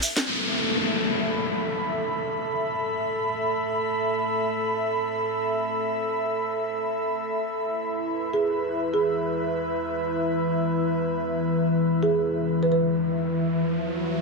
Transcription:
Already playing: E5
0.02 open hi-hat, shekere
0.17 snare, closed hi-hat, shekere
0.26 A3 A4, downlifter
0.44 E5
1.04 B5
7.64 E3 E4 G#4 B4
8.04 B4
8.33 G#4
8.94 G#4
11.33 riser
12.03 G#4
12.63 B4
12.72 B4

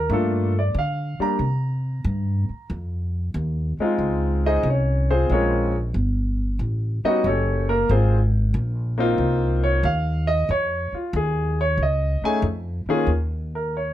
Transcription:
Already playing: A#4
0.09 G2 A3 A#3 D4 F4 A4
0.59 D5
0.74 D3
0.79 F5
1.19 G3 A#3 D4 G4 A#5, muted upright bass stroke
1.39 C3
2.04 G2
2.49 muted upright bass stroke
2.70 F2
3.34 D#2
3.79 G#3 C4 D#4 F4, muted upright bass stroke
3.98 C#2
4.46 D#4 G#4 C5 D#5
4.63 C2
4.70 C#4 C#5
5.11 C4 F4 G#4 C5
5.29 A#1 G#3 C4 C#4 F4 G#4 A#4 C#5
5.94 G1
6.59 A1
7.04 G3 B3 C#4 D#4 F#4 D#5, muted upright bass stroke
7.24 F#1 C#4 G4 A4 C#5
7.69 A#3 A#4
7.89 G#1 C4 F4 G#4 C5
8.54 A#1
8.98 A#3 C4 D#4 F4
9.18 C2
9.64 C#5
9.83 D#2 F5
10.27 D#5
10.49 F2 C#5
10.92 F4, muted upright bass stroke
11.13 D#2 G#4
11.61 C#5
11.78 C#2
11.83 D#5
12.22 A3 C#4 D#4 G#4 G#5, muted upright bass stroke
12.42 F2
12.86 D#3 A#3 C#4 F4 G#4, muted upright bass stroke
13.07 D#2
13.55 A#4
13.77 C#5

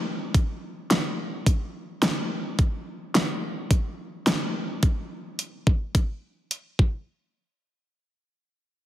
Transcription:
0.34 kick, closed hi-hat
0.91 snare, closed hi-hat
1.46 kick, closed hi-hat
2.02 snare, closed hi-hat
2.59 kick, closed hi-hat
3.15 snare, closed hi-hat
3.71 kick, closed hi-hat
4.27 snare, closed hi-hat
4.83 kick, closed hi-hat
5.39 closed hi-hat
5.67 kick
5.95 kick, closed hi-hat
6.51 closed hi-hat
6.79 kick

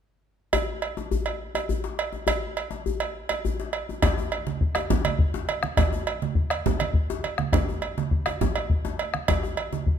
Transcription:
0.53 cowbell, djembe bass
0.68 djembe slap
0.82 cowbell
0.97 djembe slap, djembe tone
1.11 djembe bass
1.26 cowbell, djembe slap
1.55 cowbell, djembe tone
1.69 djembe bass
1.84 djembe slap
1.99 cowbell
2.13 djembe tone
2.27 cowbell, djembe bass
2.42 djembe slap
2.57 cowbell
2.71 djembe slap, djembe tone
2.86 djembe bass
3.00 cowbell, djembe slap
3.29 cowbell, djembe tone
3.45 djembe bass
3.60 djembe slap
3.73 cowbell
3.89 djembe tone
4.02 bombo rim, bombo low, cowbell, djembe slap, low conga, djembe bass
4.17 high conga, djembe tone
4.32 cowbell
4.47 djembe slap, high conga
4.61 bombo low
4.75 bombo rim, cowbell, djembe tone
4.90 djembe slap, high conga, low conga, djembe bass
5.05 cowbell, djembe slap, high conga
5.19 bombo low
5.34 djembe slap, djembe tone
5.49 cowbell, high conga
5.63 bombo rim, high conga
5.77 bombo rim, bombo low, cowbell, djembe slap, djembe bass, low conga
5.93 djembe tone, high conga
6.07 cowbell
6.22 djembe slap, high conga
6.35 bombo low
6.50 bombo rim, cowbell
6.66 djembe slap, high conga, low conga, djembe bass
6.79 bombo rim, cowbell, djembe slap, high conga
6.94 bombo low
7.10 djembe slap, djembe tone
7.24 cowbell, high conga
7.38 bombo rim, high conga
7.53 bombo rim, bombo low, cowbell, djembe slap, djembe bass, low conga
7.68 djembe tone, high conga
7.82 cowbell
7.98 djembe slap, high conga
8.11 bombo low
8.26 bombo rim, cowbell, djembe tone
8.41 djembe slap, high conga, low conga, djembe bass
8.55 bombo rim, cowbell, djembe slap
8.70 bombo low
8.85 djembe slap, djembe tone
8.99 cowbell, high conga
9.14 bombo rim, high conga
9.28 bombo rim, bombo low, cowbell, djembe slap, low conga, djembe bass
9.43 bombo rim, djembe tone
9.57 cowbell, high conga
9.73 djembe slap, high conga
9.86 bombo low

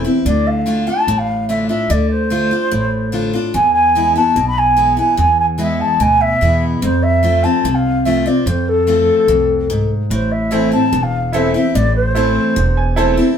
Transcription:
Already playing: E2
0.05 C4 E4
0.25 D2 D3 D5
0.47 F5
0.66 D3 A3 D4 F4
0.87 D4 F4 A5
1.07 A1 A2
1.18 F5
1.49 D3 A3 D4 F4 E5
1.69 D4 F4 E5
1.90 D2 D3 D5
2.10 C5
2.30 D3 A3 D4 F4
2.51 D4 F4
2.71 A1 A2
3.12 D3 A3 D4 F4
3.33 D4 F4
3.54 E2 G#5
3.74 G#5
3.95 E3 G#3 B3 E4
4.16 B3 E4 A5
4.36 B1 B2
4.47 B5
4.58 G#5
4.77 E3 G#3 B3 E4
4.97 B3 E4 G#5
5.17 E2 G#5
5.40 G#5
5.58 E3 G#3 B3 E4 E5
5.80 A5
6.00 D2 B2 G#5
6.21 E5
6.41 E2 E3 G#3 B3 E4
6.82 F2 C5
7.03 E5
7.23 F3 A3 C4 F4
7.43 C4 F4 A5
7.64 C2 C3
7.75 F5
8.05 F3 A3 C4 F4 E5
8.26 C4 F4 D5
8.46 F2 C5
8.68 A4
8.87 F3 A3 C4 F4
9.28 C2 F2
9.70 G#2
10.10 A1 A2 C5
10.32 E5
10.51 E3 A3 C4 E4 A4 C5
10.72 C4 E4 A5
10.92 E1 E2
11.03 F5
11.32 E3 A3 C4 E4 A4 C5 E5
11.54 C4 E4 E5
11.75 A1 A2 D5
11.96 C5
12.15 E3 A3 C4 E4 A4 C5
12.56 E1 E2
12.77 G#5
12.96 E3 A3 C4 E4 A4 C5 A5
13.17 C4 E4

